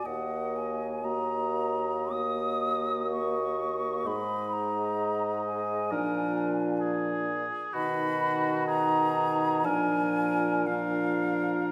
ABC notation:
X:1
M:4/4
L:1/8
Q:1/4=62
K:Ebm
V:1 name="Flute"
g a b2 e'2 d'2 | c' b2 a3 z2 | =b2 _b2 a2 f2 |]
V:2 name="Oboe"
e2 e2 e4 | e4 B z A2 | ^F2 A2 B2 B2 |]
V:3 name="Clarinet"
G2 G2 G4 | E4 =D3 z | ^D4 =D2 D2 |]
V:4 name="French horn" clef=bass
B,2 B,2 B,4 | A,4 F,3 z | ^D,4 F,2 F,2 |]
V:5 name="Bassoon" clef=bass
E,,8 | A,,4 B,,3 z | =B,,4 _B,,4 |]